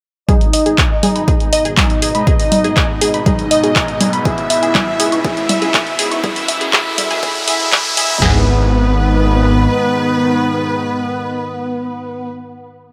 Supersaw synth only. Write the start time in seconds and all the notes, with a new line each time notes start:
0.29 D#4
1.77 D#4
3.26 D#4
4.25 E4
5.24 E4
6.24 E4
6.73 E4
7.23 E4
7.48 E4
7.72 E4
7.97 E4
8.22 B3